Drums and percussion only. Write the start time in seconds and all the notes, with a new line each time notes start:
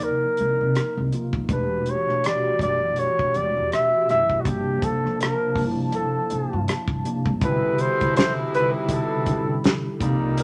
0.00 closed hi-hat
0.37 closed hi-hat
0.75 cross-stick, closed hi-hat
1.12 closed hi-hat
1.33 kick
1.49 kick, closed hi-hat
1.86 closed hi-hat
2.09 cross-stick
2.24 cross-stick, closed hi-hat
2.59 kick, closed hi-hat
2.96 closed hi-hat
3.19 kick
3.34 closed hi-hat
3.72 cross-stick, closed hi-hat
4.09 cross-stick, closed hi-hat
4.29 kick
4.45 kick, closed hi-hat
4.82 kick, closed hi-hat
5.06 cross-stick
5.21 cross-stick, closed hi-hat
5.56 kick, open hi-hat
5.92 closed hi-hat
6.30 closed hi-hat
6.68 cross-stick, closed hi-hat
6.88 kick
7.05 closed hi-hat
7.26 kick
7.41 kick, closed hi-hat
7.78 closed hi-hat
8.01 kick, closed hi-hat
8.16 snare, closed hi-hat
8.54 closed hi-hat
8.89 kick, closed hi-hat
9.26 kick, closed hi-hat
9.64 snare, closed hi-hat
10.01 kick, closed hi-hat
10.37 closed hi-hat